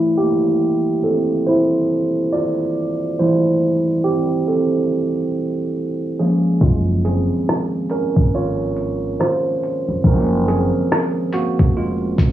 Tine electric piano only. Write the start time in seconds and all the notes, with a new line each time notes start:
Already playing: E3 G3 A3 E4
0.18 A#3 G4
1.04 C4 A4
1.47 E4 C5
2.33 F4 D5
3.19 E3 G3 A3 E4 C5
4.04 C4 G4
4.47 C4 A4
6.19 F3 G#3 A#3 C#4 G#4
6.63 G#3 F4
7.05 C4 G#4
7.91 C#4 A#4
8.35 F4 C#5
9.20 F4 C5
10.05 F3 G#3 A#3 C#4 A#4
10.48 C4 G#4
11.34 A#3 F#4
11.77 G#3 F4